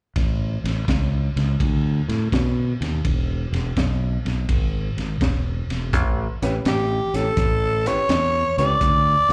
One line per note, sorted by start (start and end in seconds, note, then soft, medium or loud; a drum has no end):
0.16 0.56 A1 medium
0.16 kick medium
0.16 snare soft
0.16 ride medium
0.64 0.83 A1 medium
0.64 snare soft
0.64 ride medium
0.88 1.28 C#2 medium
0.88 kick medium
0.88 snare loud
0.88 ride medium
1.36 1.55 C#2 medium
1.36 snare soft
1.36 ride medium
1.60 2.00 D2 medium
1.60 kick medium
1.60 ride medium
2.08 2.28 A2 medium
2.08 snare soft
2.08 ride medium
2.32 2.72 B2 medium
2.32 kick medium
2.32 snare loud
2.32 ride medium
2.81 3.00 D#2 medium
2.81 snare soft
2.81 ride medium
3.05 3.45 E1 loud
3.05 kick medium
3.05 ride medium
3.52 3.72 E1 medium
3.52 snare soft
3.52 ride medium
3.77 4.17 B1 medium
3.77 kick medium
3.77 snare loud
3.77 ride medium
4.25 4.44 B1 medium
4.25 snare soft
4.25 ride medium
4.49 4.89 G#1 medium
4.49 kick medium
4.49 ride medium
4.97 5.16 G#1 medium
4.97 snare soft
4.97 ride soft
5.21 5.61 E1 medium
5.21 kick medium
5.21 snare medium
5.21 ride medium
5.70 5.93 E1 medium
5.70 snare soft
5.70 ride medium
5.93 6.27 A1 medium
5.93 kick loud
5.93 snare soft
5.93 closed hi-hat medium
6.42 6.58 A1 medium
6.42 6.54 C#4 medium
6.42 6.54 E4 medium
6.42 6.54 G4 medium
6.42 6.54 B4 medium
6.42 snare soft
6.42 closed hi-hat medium
6.65 6.99 A1 medium
6.65 7.17 G4 medium
6.65 snare loud
6.65 closed hi-hat medium
7.14 7.30 A1 medium
7.14 7.26 C#4 medium
7.14 7.26 E4 medium
7.14 7.26 G4 medium
7.14 7.89 A4 medium
7.14 7.26 C#5 medium
7.14 snare soft
7.14 closed hi-hat medium
7.37 7.87 A1 medium
7.37 kick loud
7.37 snare soft
7.37 closed hi-hat medium
7.85 7.97 C#4 medium
7.85 7.98 E4 medium
7.85 7.98 G4 medium
7.85 7.98 B4 medium
7.85 8.58 C#5 loud
7.85 snare soft
7.85 closed hi-hat medium
8.09 8.43 E2 medium
8.09 snare loud
8.09 closed hi-hat medium
8.57 8.74 C#2 medium
8.57 8.70 C#4 medium
8.57 8.70 E4 medium
8.57 8.70 G4 medium
8.57 8.70 B4 medium
8.57 9.33 D5 loud
8.57 snare soft
8.57 closed hi-hat medium
8.81 9.14 D2 loud
8.81 kick loud
8.81 snare soft
8.81 closed hi-hat medium
9.29 9.33 D2 medium
9.29 9.33 C4 medium
9.29 9.33 E4 medium